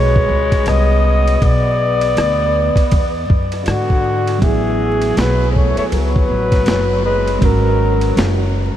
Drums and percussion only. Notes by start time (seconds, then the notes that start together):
0.16 kick
0.52 kick, cross-stick, ride
0.66 cross-stick, hi-hat pedal, ride
1.27 ride
1.42 kick, ride
2.01 ride
2.17 cross-stick, hi-hat pedal, ride
2.76 kick, ride
2.92 kick, ride
3.30 kick
3.52 cross-stick, ride
3.66 cross-stick, hi-hat pedal, ride
3.90 kick
4.28 cross-stick, ride
4.42 kick, ride
5.01 ride
5.17 snare, hi-hat pedal, ride
5.56 kick
5.77 ride
5.92 ride
6.16 kick
6.52 kick, snare, ride
6.66 snare, hi-hat pedal, ride
7.27 ride
7.42 kick, ride
8.01 ride
8.17 snare, hi-hat pedal, ride